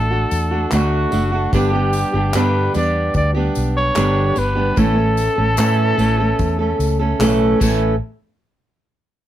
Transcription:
Already playing: A1 A3 D4 A4
0.10 A3 D4 F#4
0.31 E2, tambourine
0.51 A3 D4 F#4
0.71 D2 D3 A3 D4 F#4, clap, tambourine
1.11 F#1 D3 A3 D4 F#4, tambourine
1.32 A3 D4 F#4
1.53 G1 G2 D3 G3 B3 D4 G4, kick, tambourine
1.73 G3 B3 D4 G4
1.93 tambourine
2.13 G1 G3 B3 D4 G4
2.33 G2 D3 G3 B3 D4 G4 B4, clap, tambourine
2.74 E2 G3 B3 D4 G4 D5, tambourine
3.14 D2 D5, kick, tambourine
3.34 G3 B3 D4 G4
3.55 B1, tambourine
3.77 C#5
3.95 G1 G2 D3 G3 B3 D4 G4, clap, tambourine
4.35 G1 G3 B3 D4 G4 B4, tambourine
4.55 G3 B3 D4 G4
4.76 A1 A2 E3 A3 C#4 A4, kick, tambourine
4.96 A3 C#4 A4
5.17 tambourine
5.36 A1 A3 C#4 A4
5.57 A2 E3 A3 C#4 A4, clap, tambourine
5.98 A1 E3 A3 C#4 A4, tambourine
6.18 A3 C#4 A4
6.39 E2, kick, tambourine
6.59 A3 C#4 A4
6.79 C#2, tambourine
6.99 A3 C#4 A4
7.19 B1 A2 E3 A3 C#4 A4, clap, tambourine
7.60 A1 A2 E3 A3 C#4 A4, kick, crash, tambourine

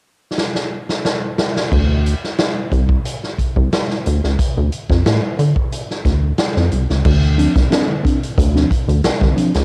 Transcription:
0.38 snare
0.55 snare
0.89 snare
1.05 snare
1.38 snare
1.57 snare
1.72 D2, kick, crash
2.06 closed hi-hat
2.24 snare
2.39 snare, closed hi-hat
2.72 C2, kick, closed hi-hat
2.89 kick
3.05 closed hi-hat
3.24 snare
3.39 C2, kick, closed hi-hat
3.56 C2, kick
3.73 snare, closed hi-hat
3.90 snare
4.06 D2, closed hi-hat
4.24 C#2, snare
4.39 kick, closed hi-hat
4.57 D2
4.72 closed hi-hat
4.89 F2, kick, snare
5.06 A2, snare, closed hi-hat
5.39 D3, closed hi-hat
5.56 kick
5.72 closed hi-hat
5.91 snare
6.05 D2, kick, snare, closed hi-hat
6.38 snare, closed hi-hat
6.56 F2, snare
6.72 C2, closed hi-hat
6.90 C#2, snare
7.05 D2 D3, kick, crash
7.23 closed hi-hat
7.38 F3 C4 D4, closed hi-hat
7.56 C2, kick, snare, closed hi-hat
7.70 C4 D4, snare, closed hi-hat
7.88 D3
8.03 C4 D4, kick, closed hi-hat
8.23 closed hi-hat
8.38 D2, kick, closed hi-hat
8.55 F3 C4 D4, snare
8.71 kick, closed hi-hat
8.88 D2 D3, closed hi-hat
9.04 C2 C4 D4, snare, closed hi-hat
9.21 C2 D3, kick, snare
9.36 F3 C4 D4, closed hi-hat
9.54 C#2, snare, closed hi-hat

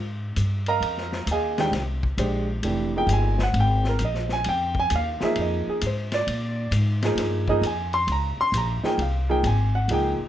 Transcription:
Already playing: G#2
0.36 G2, hi-hat pedal, ride
0.66 A#4 D#5 F5 A#5, ride
0.80 F2, ride
0.97 snare
1.12 snare
1.26 D#2, hi-hat pedal, ride
1.31 G#4 D#5 F5 G#5
1.58 D#3 G#3 D4 G4 G5, snare, ride
1.71 C2, snare, ride
2.03 kick
2.17 A#1 G#3 D4 G4 C5, hi-hat pedal, ride
2.63 F1 E3 A3 D4 G4, ride
2.96 F3 A#3 D#4 G#4 G5
3.07 G1, hi-hat pedal, ride
3.12 G#5
3.39 snare
3.43 F#5
3.53 G#1, ride
3.60 G5
3.84 snare
3.89 A#4
3.99 A#1, hi-hat pedal, ride
4.05 D#5
4.14 snare
4.29 G#5, snare
4.44 F2, ride
4.49 G5
4.75 kick
4.80 G#5
4.90 D#2, hi-hat pedal, ride
4.95 F5
5.20 F3 A#3 D#4 G#4, muted upright bass stroke, snare
5.25 E5
5.35 F2, ride
5.41 D#5
5.67 G#4, muted upright bass stroke
5.81 G#2, hi-hat pedal, ride
5.87 C5
6.12 D5, snare, ride
6.27 A#2, ride
6.71 G#2, hi-hat pedal, ride
7.02 F3 A#3 D#4 G#4, snare, ride
7.16 G2, snare, ride
7.48 F3 A#3 D#4 G#4 D#5, kick
7.61 F2, hi-hat pedal, ride
7.66 G#5
7.93 C6, ride
8.07 C#2, ride
8.12 A#5
8.37 C6, muted upright bass stroke
8.52 A#1, hi-hat pedal, ride
8.57 A#5
8.83 F3 A#3 D#4 G#4 G5, muted upright bass stroke, snare
8.98 C2, ride
9.02 F5
9.29 F3 A#3 D#4 G#4 G5
9.43 G#1 G#5, hi-hat pedal, ride
9.75 F#5
9.88 C#2 F3 A#3 D#4 G#4, ride
9.93 G5
10.19 muted upright bass stroke

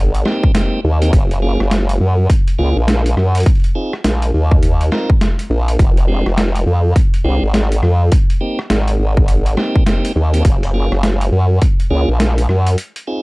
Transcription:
Already playing: G#1
0.15 closed hi-hat
0.25 A#3 C4 D#4 G4, cross-stick, snare
0.44 kick
0.55 A#3 C4 D#4 G4, snare, closed hi-hat
0.84 D#2
1.02 A#3 C4 D#4 G4, closed hi-hat
1.13 F#1, kick, closed hi-hat
1.31 closed hi-hat
1.42 A#3 C#4 F4 G#4
1.60 F#1, cross-stick
1.71 snare, closed hi-hat
1.89 closed hi-hat
2.00 F#2
2.30 kick, closed hi-hat
2.48 closed hi-hat
2.58 C#2 A#3 C#4 F4 G#4
2.76 A#1
2.88 snare, closed hi-hat
3.06 closed hi-hat
3.17 F#2, cross-stick
3.35 closed hi-hat
3.37 closed hi-hat
3.40 closed hi-hat
3.43 closed hi-hat
3.46 kick, closed hi-hat
3.51 closed hi-hat
3.55 closed hi-hat
3.60 closed hi-hat
3.64 closed hi-hat
3.75 C4 D#4 F4 G#4
3.93 cross-stick
4.04 A#1, snare, closed hi-hat
4.22 closed hi-hat
4.34 D#2
4.51 kick
4.63 closed hi-hat
4.81 closed hi-hat
4.92 C4 D#4 F4 A#4, cross-stick, snare
5.10 kick
5.21 snare, closed hi-hat
5.39 closed hi-hat
5.50 A#1
5.68 closed hi-hat
5.79 F1, kick, closed hi-hat
5.97 closed hi-hat
6.08 G#3 C4 D4 G4
6.26 F1, cross-stick
6.38 snare, closed hi-hat
6.56 closed hi-hat
6.66 F2
6.96 kick, closed hi-hat
7.14 closed hi-hat
7.24 C2 G#3 C4 D4 G4
7.43 G#1
7.54 snare, closed hi-hat
7.72 closed hi-hat
7.83 F2, cross-stick
8.12 kick, closed hi-hat
8.30 closed hi-hat
8.41 A#3 C4 D#4 G4
8.59 cross-stick
8.70 G#1, snare, closed hi-hat
8.88 closed hi-hat
8.99 G#1
9.17 kick
9.28 closed hi-hat
9.46 closed hi-hat
9.57 A#3 C4 D#4 G4, cross-stick, snare
9.76 kick
9.87 A#3 C4 D#4 G4, snare, closed hi-hat
10.05 closed hi-hat
10.16 D#2
10.33 A#3 C4 D#4 G4, closed hi-hat
10.45 F#1, kick, closed hi-hat
10.63 closed hi-hat
10.74 A#3 C#4 F4 G#4
10.92 F#1, cross-stick
11.03 snare, closed hi-hat
11.21 closed hi-hat
11.32 F#2
11.62 kick, closed hi-hat
11.80 closed hi-hat
11.90 C#2 A#3 C#4 F4 G#4
12.08 A#1
12.20 snare, closed hi-hat
12.38 closed hi-hat
12.49 F#2, cross-stick
12.67 closed hi-hat
12.78 closed hi-hat
12.96 closed hi-hat
13.07 C4 D#4 F4 G#4

